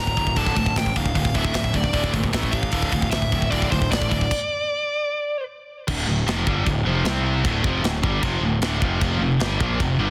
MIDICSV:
0, 0, Header, 1, 5, 480
1, 0, Start_track
1, 0, Key_signature, -1, "minor"
1, 0, Tempo, 393185
1, 1397, Time_signature, 4, 2, 24, 8
1, 12330, End_track
2, 0, Start_track
2, 0, Title_t, "Lead electric guitar"
2, 0, Program_c, 0, 29
2, 0, Note_on_c, 0, 82, 97
2, 415, Note_off_c, 0, 82, 0
2, 453, Note_on_c, 0, 81, 103
2, 937, Note_on_c, 0, 79, 95
2, 939, Note_off_c, 0, 81, 0
2, 1173, Note_off_c, 0, 79, 0
2, 1178, Note_on_c, 0, 77, 98
2, 1652, Note_off_c, 0, 77, 0
2, 1657, Note_on_c, 0, 76, 92
2, 2140, Note_on_c, 0, 74, 90
2, 2142, Note_off_c, 0, 76, 0
2, 2577, Note_off_c, 0, 74, 0
2, 3069, Note_on_c, 0, 77, 105
2, 3787, Note_off_c, 0, 77, 0
2, 3792, Note_on_c, 0, 76, 92
2, 4244, Note_off_c, 0, 76, 0
2, 4278, Note_on_c, 0, 74, 98
2, 4528, Note_off_c, 0, 74, 0
2, 4533, Note_on_c, 0, 72, 87
2, 4775, Note_off_c, 0, 72, 0
2, 4780, Note_on_c, 0, 74, 81
2, 6646, Note_off_c, 0, 74, 0
2, 12330, End_track
3, 0, Start_track
3, 0, Title_t, "Distorted electric guitar"
3, 0, Program_c, 1, 30
3, 0, Note_on_c, 1, 38, 74
3, 0, Note_on_c, 1, 45, 81
3, 179, Note_off_c, 1, 38, 0
3, 181, Note_off_c, 1, 45, 0
3, 209, Note_on_c, 1, 38, 69
3, 212, Note_on_c, 1, 45, 68
3, 418, Note_off_c, 1, 38, 0
3, 419, Note_off_c, 1, 45, 0
3, 440, Note_on_c, 1, 38, 87
3, 449, Note_on_c, 1, 45, 91
3, 450, Note_on_c, 1, 50, 101
3, 664, Note_off_c, 1, 38, 0
3, 668, Note_off_c, 1, 45, 0
3, 668, Note_off_c, 1, 50, 0
3, 681, Note_on_c, 1, 45, 75
3, 686, Note_on_c, 1, 38, 72
3, 895, Note_off_c, 1, 45, 0
3, 897, Note_off_c, 1, 38, 0
3, 925, Note_on_c, 1, 38, 63
3, 930, Note_on_c, 1, 45, 87
3, 1137, Note_off_c, 1, 38, 0
3, 1139, Note_off_c, 1, 45, 0
3, 1174, Note_on_c, 1, 38, 69
3, 1177, Note_on_c, 1, 45, 74
3, 1382, Note_off_c, 1, 38, 0
3, 1383, Note_off_c, 1, 45, 0
3, 1402, Note_on_c, 1, 38, 61
3, 1409, Note_on_c, 1, 45, 78
3, 1616, Note_off_c, 1, 38, 0
3, 1619, Note_off_c, 1, 45, 0
3, 1640, Note_on_c, 1, 38, 92
3, 1650, Note_on_c, 1, 45, 104
3, 1653, Note_on_c, 1, 50, 88
3, 1865, Note_off_c, 1, 38, 0
3, 1870, Note_off_c, 1, 45, 0
3, 1871, Note_off_c, 1, 50, 0
3, 1878, Note_on_c, 1, 38, 65
3, 1885, Note_on_c, 1, 45, 83
3, 2094, Note_off_c, 1, 38, 0
3, 2098, Note_off_c, 1, 45, 0
3, 2115, Note_on_c, 1, 38, 62
3, 2122, Note_on_c, 1, 45, 70
3, 2333, Note_off_c, 1, 38, 0
3, 2337, Note_off_c, 1, 45, 0
3, 2355, Note_on_c, 1, 38, 85
3, 2370, Note_on_c, 1, 45, 80
3, 2379, Note_on_c, 1, 50, 104
3, 2583, Note_off_c, 1, 38, 0
3, 2590, Note_off_c, 1, 45, 0
3, 2595, Note_off_c, 1, 50, 0
3, 2610, Note_on_c, 1, 38, 75
3, 2620, Note_on_c, 1, 45, 71
3, 2821, Note_off_c, 1, 38, 0
3, 2826, Note_off_c, 1, 45, 0
3, 2842, Note_on_c, 1, 45, 91
3, 2856, Note_on_c, 1, 52, 101
3, 2870, Note_on_c, 1, 57, 90
3, 3067, Note_off_c, 1, 45, 0
3, 3074, Note_off_c, 1, 52, 0
3, 3081, Note_off_c, 1, 57, 0
3, 3095, Note_on_c, 1, 45, 65
3, 3099, Note_on_c, 1, 52, 73
3, 3304, Note_off_c, 1, 45, 0
3, 3306, Note_off_c, 1, 52, 0
3, 3329, Note_on_c, 1, 38, 88
3, 3342, Note_on_c, 1, 45, 89
3, 3348, Note_on_c, 1, 50, 99
3, 3551, Note_off_c, 1, 38, 0
3, 3555, Note_off_c, 1, 45, 0
3, 3561, Note_off_c, 1, 50, 0
3, 3569, Note_on_c, 1, 45, 81
3, 3572, Note_on_c, 1, 38, 66
3, 3782, Note_off_c, 1, 45, 0
3, 3783, Note_off_c, 1, 38, 0
3, 3827, Note_on_c, 1, 38, 67
3, 3830, Note_on_c, 1, 45, 75
3, 4031, Note_off_c, 1, 38, 0
3, 4032, Note_off_c, 1, 45, 0
3, 4055, Note_on_c, 1, 38, 68
3, 4059, Note_on_c, 1, 45, 82
3, 4261, Note_off_c, 1, 38, 0
3, 4267, Note_off_c, 1, 45, 0
3, 4276, Note_on_c, 1, 38, 91
3, 4296, Note_on_c, 1, 45, 89
3, 4299, Note_on_c, 1, 50, 104
3, 4506, Note_off_c, 1, 38, 0
3, 4515, Note_off_c, 1, 45, 0
3, 4517, Note_off_c, 1, 50, 0
3, 4543, Note_on_c, 1, 38, 71
3, 4553, Note_on_c, 1, 45, 85
3, 4750, Note_off_c, 1, 38, 0
3, 4755, Note_off_c, 1, 45, 0
3, 4763, Note_on_c, 1, 38, 65
3, 4772, Note_on_c, 1, 45, 75
3, 4980, Note_off_c, 1, 38, 0
3, 4984, Note_off_c, 1, 45, 0
3, 5000, Note_on_c, 1, 38, 67
3, 5005, Note_on_c, 1, 45, 81
3, 5219, Note_off_c, 1, 38, 0
3, 5221, Note_off_c, 1, 45, 0
3, 7174, Note_on_c, 1, 38, 94
3, 7190, Note_on_c, 1, 45, 93
3, 7191, Note_on_c, 1, 50, 99
3, 7399, Note_off_c, 1, 45, 0
3, 7404, Note_off_c, 1, 38, 0
3, 7412, Note_off_c, 1, 50, 0
3, 7413, Note_on_c, 1, 45, 68
3, 7418, Note_on_c, 1, 38, 72
3, 7603, Note_off_c, 1, 45, 0
3, 7605, Note_off_c, 1, 38, 0
3, 7646, Note_on_c, 1, 41, 103
3, 7659, Note_on_c, 1, 48, 100
3, 7662, Note_on_c, 1, 53, 120
3, 7880, Note_off_c, 1, 41, 0
3, 7886, Note_off_c, 1, 48, 0
3, 7888, Note_off_c, 1, 53, 0
3, 7895, Note_on_c, 1, 43, 93
3, 7905, Note_on_c, 1, 50, 97
3, 7912, Note_on_c, 1, 55, 92
3, 8124, Note_off_c, 1, 43, 0
3, 8129, Note_off_c, 1, 50, 0
3, 8132, Note_off_c, 1, 55, 0
3, 8133, Note_on_c, 1, 38, 64
3, 8141, Note_on_c, 1, 45, 68
3, 8322, Note_off_c, 1, 38, 0
3, 8326, Note_off_c, 1, 45, 0
3, 8374, Note_on_c, 1, 41, 96
3, 8391, Note_on_c, 1, 48, 91
3, 8396, Note_on_c, 1, 53, 107
3, 8602, Note_off_c, 1, 48, 0
3, 8603, Note_off_c, 1, 41, 0
3, 8614, Note_off_c, 1, 53, 0
3, 8617, Note_on_c, 1, 48, 93
3, 8636, Note_on_c, 1, 55, 85
3, 8642, Note_on_c, 1, 60, 93
3, 9084, Note_off_c, 1, 48, 0
3, 9094, Note_off_c, 1, 55, 0
3, 9096, Note_off_c, 1, 60, 0
3, 9102, Note_on_c, 1, 38, 100
3, 9116, Note_on_c, 1, 45, 96
3, 9119, Note_on_c, 1, 50, 100
3, 9327, Note_off_c, 1, 38, 0
3, 9334, Note_off_c, 1, 45, 0
3, 9335, Note_off_c, 1, 50, 0
3, 9335, Note_on_c, 1, 41, 101
3, 9350, Note_on_c, 1, 48, 107
3, 9352, Note_on_c, 1, 53, 113
3, 9563, Note_off_c, 1, 41, 0
3, 9570, Note_off_c, 1, 48, 0
3, 9570, Note_on_c, 1, 38, 69
3, 9571, Note_off_c, 1, 53, 0
3, 9583, Note_on_c, 1, 45, 73
3, 9759, Note_off_c, 1, 38, 0
3, 9766, Note_off_c, 1, 45, 0
3, 9805, Note_on_c, 1, 43, 75
3, 9818, Note_on_c, 1, 50, 84
3, 9827, Note_on_c, 1, 55, 92
3, 10034, Note_off_c, 1, 43, 0
3, 10039, Note_on_c, 1, 41, 96
3, 10040, Note_off_c, 1, 50, 0
3, 10045, Note_on_c, 1, 48, 104
3, 10048, Note_off_c, 1, 55, 0
3, 10063, Note_on_c, 1, 53, 106
3, 10274, Note_off_c, 1, 41, 0
3, 10277, Note_off_c, 1, 48, 0
3, 10286, Note_off_c, 1, 53, 0
3, 10294, Note_on_c, 1, 38, 76
3, 10303, Note_on_c, 1, 45, 79
3, 10480, Note_off_c, 1, 38, 0
3, 10485, Note_off_c, 1, 45, 0
3, 10528, Note_on_c, 1, 38, 89
3, 10537, Note_on_c, 1, 45, 89
3, 10545, Note_on_c, 1, 50, 104
3, 10754, Note_off_c, 1, 38, 0
3, 10759, Note_on_c, 1, 41, 87
3, 10762, Note_off_c, 1, 45, 0
3, 10766, Note_off_c, 1, 50, 0
3, 10774, Note_on_c, 1, 48, 102
3, 10784, Note_on_c, 1, 53, 105
3, 10993, Note_off_c, 1, 41, 0
3, 11000, Note_off_c, 1, 48, 0
3, 11005, Note_off_c, 1, 53, 0
3, 11005, Note_on_c, 1, 41, 91
3, 11021, Note_on_c, 1, 48, 92
3, 11027, Note_on_c, 1, 53, 117
3, 11235, Note_off_c, 1, 41, 0
3, 11240, Note_off_c, 1, 48, 0
3, 11246, Note_off_c, 1, 53, 0
3, 11251, Note_on_c, 1, 41, 68
3, 11255, Note_on_c, 1, 48, 69
3, 11437, Note_off_c, 1, 41, 0
3, 11439, Note_off_c, 1, 48, 0
3, 11482, Note_on_c, 1, 43, 99
3, 11490, Note_on_c, 1, 50, 100
3, 11505, Note_on_c, 1, 55, 125
3, 11713, Note_off_c, 1, 43, 0
3, 11716, Note_off_c, 1, 50, 0
3, 11724, Note_off_c, 1, 55, 0
3, 11725, Note_on_c, 1, 46, 79
3, 11735, Note_on_c, 1, 53, 98
3, 11736, Note_on_c, 1, 58, 99
3, 11954, Note_off_c, 1, 46, 0
3, 11959, Note_off_c, 1, 53, 0
3, 11959, Note_off_c, 1, 58, 0
3, 11971, Note_on_c, 1, 48, 76
3, 11974, Note_on_c, 1, 41, 59
3, 12156, Note_off_c, 1, 48, 0
3, 12157, Note_off_c, 1, 41, 0
3, 12196, Note_on_c, 1, 43, 94
3, 12206, Note_on_c, 1, 50, 88
3, 12210, Note_on_c, 1, 55, 107
3, 12330, Note_off_c, 1, 43, 0
3, 12330, Note_off_c, 1, 50, 0
3, 12330, Note_off_c, 1, 55, 0
3, 12330, End_track
4, 0, Start_track
4, 0, Title_t, "Picked electric bass"
4, 0, Program_c, 2, 34
4, 0, Note_on_c, 2, 26, 84
4, 154, Note_off_c, 2, 26, 0
4, 207, Note_on_c, 2, 26, 80
4, 397, Note_off_c, 2, 26, 0
4, 447, Note_on_c, 2, 26, 77
4, 638, Note_off_c, 2, 26, 0
4, 687, Note_on_c, 2, 26, 85
4, 878, Note_off_c, 2, 26, 0
4, 928, Note_on_c, 2, 33, 88
4, 1119, Note_off_c, 2, 33, 0
4, 1174, Note_on_c, 2, 26, 82
4, 1362, Note_off_c, 2, 26, 0
4, 1405, Note_on_c, 2, 26, 91
4, 1597, Note_off_c, 2, 26, 0
4, 1637, Note_on_c, 2, 26, 91
4, 1833, Note_off_c, 2, 26, 0
4, 1884, Note_on_c, 2, 26, 89
4, 2077, Note_off_c, 2, 26, 0
4, 2123, Note_on_c, 2, 26, 80
4, 2317, Note_off_c, 2, 26, 0
4, 2358, Note_on_c, 2, 26, 96
4, 2554, Note_off_c, 2, 26, 0
4, 2604, Note_on_c, 2, 34, 100
4, 2798, Note_off_c, 2, 34, 0
4, 2849, Note_on_c, 2, 33, 90
4, 3041, Note_off_c, 2, 33, 0
4, 3083, Note_on_c, 2, 33, 81
4, 3277, Note_off_c, 2, 33, 0
4, 3325, Note_on_c, 2, 26, 90
4, 3519, Note_off_c, 2, 26, 0
4, 3564, Note_on_c, 2, 26, 88
4, 3759, Note_off_c, 2, 26, 0
4, 3816, Note_on_c, 2, 26, 91
4, 4006, Note_off_c, 2, 26, 0
4, 4047, Note_on_c, 2, 26, 94
4, 4241, Note_off_c, 2, 26, 0
4, 4299, Note_on_c, 2, 26, 95
4, 4488, Note_off_c, 2, 26, 0
4, 4537, Note_on_c, 2, 26, 98
4, 4727, Note_off_c, 2, 26, 0
4, 4784, Note_on_c, 2, 33, 89
4, 4971, Note_off_c, 2, 33, 0
4, 5020, Note_on_c, 2, 26, 82
4, 5209, Note_off_c, 2, 26, 0
4, 7181, Note_on_c, 2, 26, 103
4, 7395, Note_off_c, 2, 26, 0
4, 7402, Note_on_c, 2, 26, 81
4, 7628, Note_off_c, 2, 26, 0
4, 7645, Note_on_c, 2, 29, 89
4, 7870, Note_off_c, 2, 29, 0
4, 7902, Note_on_c, 2, 31, 93
4, 8118, Note_off_c, 2, 31, 0
4, 8128, Note_on_c, 2, 26, 85
4, 8351, Note_off_c, 2, 26, 0
4, 8357, Note_on_c, 2, 29, 110
4, 8585, Note_off_c, 2, 29, 0
4, 8595, Note_on_c, 2, 36, 104
4, 9046, Note_off_c, 2, 36, 0
4, 9083, Note_on_c, 2, 26, 98
4, 9307, Note_off_c, 2, 26, 0
4, 9322, Note_on_c, 2, 29, 91
4, 9537, Note_off_c, 2, 29, 0
4, 9544, Note_on_c, 2, 26, 79
4, 9777, Note_off_c, 2, 26, 0
4, 9805, Note_on_c, 2, 31, 101
4, 10028, Note_off_c, 2, 31, 0
4, 10036, Note_on_c, 2, 29, 99
4, 10257, Note_off_c, 2, 29, 0
4, 10264, Note_on_c, 2, 26, 85
4, 10496, Note_off_c, 2, 26, 0
4, 10508, Note_on_c, 2, 26, 93
4, 10737, Note_off_c, 2, 26, 0
4, 10762, Note_on_c, 2, 29, 92
4, 10985, Note_off_c, 2, 29, 0
4, 10999, Note_on_c, 2, 29, 98
4, 11209, Note_off_c, 2, 29, 0
4, 11216, Note_on_c, 2, 29, 90
4, 11450, Note_off_c, 2, 29, 0
4, 11467, Note_on_c, 2, 31, 90
4, 11695, Note_off_c, 2, 31, 0
4, 11724, Note_on_c, 2, 34, 104
4, 11944, Note_off_c, 2, 34, 0
4, 11959, Note_on_c, 2, 29, 77
4, 12176, Note_off_c, 2, 29, 0
4, 12184, Note_on_c, 2, 31, 100
4, 12330, Note_off_c, 2, 31, 0
4, 12330, End_track
5, 0, Start_track
5, 0, Title_t, "Drums"
5, 89, Note_on_c, 9, 36, 70
5, 208, Note_off_c, 9, 36, 0
5, 208, Note_on_c, 9, 36, 79
5, 208, Note_on_c, 9, 46, 45
5, 326, Note_off_c, 9, 36, 0
5, 326, Note_on_c, 9, 36, 84
5, 330, Note_off_c, 9, 46, 0
5, 442, Note_on_c, 9, 46, 62
5, 446, Note_off_c, 9, 36, 0
5, 446, Note_on_c, 9, 36, 78
5, 564, Note_off_c, 9, 46, 0
5, 567, Note_off_c, 9, 36, 0
5, 567, Note_on_c, 9, 36, 89
5, 689, Note_off_c, 9, 36, 0
5, 689, Note_on_c, 9, 36, 82
5, 692, Note_on_c, 9, 46, 45
5, 810, Note_off_c, 9, 36, 0
5, 810, Note_on_c, 9, 36, 81
5, 814, Note_off_c, 9, 46, 0
5, 931, Note_off_c, 9, 36, 0
5, 931, Note_on_c, 9, 36, 80
5, 932, Note_on_c, 9, 46, 68
5, 947, Note_on_c, 9, 38, 112
5, 1052, Note_off_c, 9, 36, 0
5, 1052, Note_on_c, 9, 36, 76
5, 1055, Note_off_c, 9, 46, 0
5, 1069, Note_off_c, 9, 38, 0
5, 1172, Note_off_c, 9, 36, 0
5, 1172, Note_on_c, 9, 36, 87
5, 1176, Note_on_c, 9, 46, 57
5, 1289, Note_off_c, 9, 36, 0
5, 1289, Note_on_c, 9, 36, 86
5, 1298, Note_off_c, 9, 46, 0
5, 1408, Note_off_c, 9, 36, 0
5, 1408, Note_on_c, 9, 36, 76
5, 1408, Note_on_c, 9, 46, 72
5, 1526, Note_off_c, 9, 36, 0
5, 1526, Note_on_c, 9, 36, 82
5, 1530, Note_off_c, 9, 46, 0
5, 1642, Note_on_c, 9, 46, 53
5, 1647, Note_off_c, 9, 36, 0
5, 1647, Note_on_c, 9, 36, 80
5, 1764, Note_off_c, 9, 46, 0
5, 1765, Note_off_c, 9, 36, 0
5, 1765, Note_on_c, 9, 36, 96
5, 1879, Note_on_c, 9, 46, 81
5, 1885, Note_off_c, 9, 36, 0
5, 1885, Note_on_c, 9, 36, 84
5, 1894, Note_on_c, 9, 38, 109
5, 2002, Note_off_c, 9, 46, 0
5, 2004, Note_off_c, 9, 36, 0
5, 2004, Note_on_c, 9, 36, 77
5, 2016, Note_off_c, 9, 38, 0
5, 2123, Note_on_c, 9, 46, 53
5, 2125, Note_off_c, 9, 36, 0
5, 2125, Note_on_c, 9, 36, 79
5, 2243, Note_off_c, 9, 36, 0
5, 2243, Note_on_c, 9, 36, 73
5, 2245, Note_off_c, 9, 46, 0
5, 2360, Note_on_c, 9, 46, 70
5, 2365, Note_off_c, 9, 36, 0
5, 2365, Note_on_c, 9, 36, 75
5, 2482, Note_off_c, 9, 46, 0
5, 2486, Note_off_c, 9, 36, 0
5, 2486, Note_on_c, 9, 36, 85
5, 2608, Note_off_c, 9, 36, 0
5, 2609, Note_on_c, 9, 36, 82
5, 2609, Note_on_c, 9, 46, 62
5, 2729, Note_off_c, 9, 36, 0
5, 2729, Note_on_c, 9, 36, 87
5, 2731, Note_off_c, 9, 46, 0
5, 2846, Note_on_c, 9, 46, 78
5, 2849, Note_off_c, 9, 36, 0
5, 2849, Note_on_c, 9, 36, 84
5, 2861, Note_on_c, 9, 38, 124
5, 2968, Note_off_c, 9, 36, 0
5, 2968, Note_off_c, 9, 46, 0
5, 2968, Note_on_c, 9, 36, 77
5, 2983, Note_off_c, 9, 38, 0
5, 3080, Note_on_c, 9, 46, 53
5, 3088, Note_off_c, 9, 36, 0
5, 3088, Note_on_c, 9, 36, 90
5, 3203, Note_off_c, 9, 46, 0
5, 3209, Note_off_c, 9, 36, 0
5, 3209, Note_on_c, 9, 36, 84
5, 3316, Note_on_c, 9, 46, 81
5, 3328, Note_off_c, 9, 36, 0
5, 3328, Note_on_c, 9, 36, 83
5, 3438, Note_off_c, 9, 46, 0
5, 3449, Note_off_c, 9, 36, 0
5, 3449, Note_on_c, 9, 36, 76
5, 3564, Note_on_c, 9, 46, 59
5, 3571, Note_off_c, 9, 36, 0
5, 3571, Note_on_c, 9, 36, 84
5, 3686, Note_off_c, 9, 46, 0
5, 3691, Note_off_c, 9, 36, 0
5, 3691, Note_on_c, 9, 36, 98
5, 3802, Note_on_c, 9, 46, 80
5, 3812, Note_off_c, 9, 36, 0
5, 3812, Note_on_c, 9, 36, 86
5, 3817, Note_on_c, 9, 38, 121
5, 3924, Note_off_c, 9, 46, 0
5, 3933, Note_off_c, 9, 36, 0
5, 3933, Note_on_c, 9, 36, 80
5, 3939, Note_off_c, 9, 38, 0
5, 4055, Note_off_c, 9, 36, 0
5, 4055, Note_on_c, 9, 36, 84
5, 4056, Note_on_c, 9, 46, 52
5, 4177, Note_off_c, 9, 36, 0
5, 4177, Note_on_c, 9, 36, 78
5, 4178, Note_off_c, 9, 46, 0
5, 4297, Note_on_c, 9, 46, 72
5, 4299, Note_off_c, 9, 36, 0
5, 4299, Note_on_c, 9, 36, 76
5, 4419, Note_off_c, 9, 46, 0
5, 4421, Note_off_c, 9, 36, 0
5, 4421, Note_on_c, 9, 36, 82
5, 4541, Note_off_c, 9, 36, 0
5, 4541, Note_on_c, 9, 36, 80
5, 4553, Note_on_c, 9, 46, 53
5, 4660, Note_off_c, 9, 36, 0
5, 4660, Note_on_c, 9, 36, 95
5, 4675, Note_off_c, 9, 46, 0
5, 4781, Note_off_c, 9, 36, 0
5, 4781, Note_on_c, 9, 36, 83
5, 4787, Note_on_c, 9, 46, 74
5, 4802, Note_on_c, 9, 38, 100
5, 4903, Note_off_c, 9, 36, 0
5, 4903, Note_on_c, 9, 36, 87
5, 4909, Note_off_c, 9, 46, 0
5, 4924, Note_off_c, 9, 38, 0
5, 5023, Note_off_c, 9, 36, 0
5, 5023, Note_on_c, 9, 36, 85
5, 5027, Note_on_c, 9, 46, 49
5, 5143, Note_off_c, 9, 36, 0
5, 5143, Note_on_c, 9, 36, 80
5, 5149, Note_off_c, 9, 46, 0
5, 5262, Note_off_c, 9, 36, 0
5, 5262, Note_on_c, 9, 36, 89
5, 5263, Note_on_c, 9, 49, 98
5, 5385, Note_off_c, 9, 36, 0
5, 5385, Note_off_c, 9, 49, 0
5, 7174, Note_on_c, 9, 49, 127
5, 7174, Note_on_c, 9, 52, 61
5, 7178, Note_on_c, 9, 36, 115
5, 7296, Note_off_c, 9, 49, 0
5, 7296, Note_off_c, 9, 52, 0
5, 7300, Note_off_c, 9, 36, 0
5, 7662, Note_on_c, 9, 52, 67
5, 7677, Note_on_c, 9, 38, 118
5, 7784, Note_off_c, 9, 52, 0
5, 7799, Note_off_c, 9, 38, 0
5, 7897, Note_on_c, 9, 36, 101
5, 8019, Note_off_c, 9, 36, 0
5, 8137, Note_on_c, 9, 36, 81
5, 8140, Note_on_c, 9, 52, 52
5, 8259, Note_off_c, 9, 36, 0
5, 8262, Note_off_c, 9, 52, 0
5, 8607, Note_on_c, 9, 52, 60
5, 8622, Note_on_c, 9, 38, 107
5, 8729, Note_off_c, 9, 52, 0
5, 8744, Note_off_c, 9, 38, 0
5, 9092, Note_on_c, 9, 36, 105
5, 9099, Note_on_c, 9, 52, 66
5, 9214, Note_off_c, 9, 36, 0
5, 9221, Note_off_c, 9, 52, 0
5, 9330, Note_on_c, 9, 36, 120
5, 9452, Note_off_c, 9, 36, 0
5, 9571, Note_on_c, 9, 52, 60
5, 9586, Note_on_c, 9, 38, 120
5, 9693, Note_off_c, 9, 52, 0
5, 9708, Note_off_c, 9, 38, 0
5, 9809, Note_on_c, 9, 36, 109
5, 9931, Note_off_c, 9, 36, 0
5, 10042, Note_on_c, 9, 52, 62
5, 10046, Note_on_c, 9, 36, 103
5, 10164, Note_off_c, 9, 52, 0
5, 10168, Note_off_c, 9, 36, 0
5, 10519, Note_on_c, 9, 52, 67
5, 10533, Note_on_c, 9, 38, 123
5, 10641, Note_off_c, 9, 52, 0
5, 10655, Note_off_c, 9, 38, 0
5, 10766, Note_on_c, 9, 36, 114
5, 10888, Note_off_c, 9, 36, 0
5, 11004, Note_on_c, 9, 52, 62
5, 11005, Note_on_c, 9, 36, 117
5, 11126, Note_off_c, 9, 52, 0
5, 11127, Note_off_c, 9, 36, 0
5, 11478, Note_on_c, 9, 52, 67
5, 11492, Note_on_c, 9, 38, 121
5, 11600, Note_off_c, 9, 52, 0
5, 11614, Note_off_c, 9, 38, 0
5, 11726, Note_on_c, 9, 36, 103
5, 11848, Note_off_c, 9, 36, 0
5, 11965, Note_on_c, 9, 36, 85
5, 11965, Note_on_c, 9, 52, 55
5, 12087, Note_off_c, 9, 36, 0
5, 12087, Note_off_c, 9, 52, 0
5, 12330, End_track
0, 0, End_of_file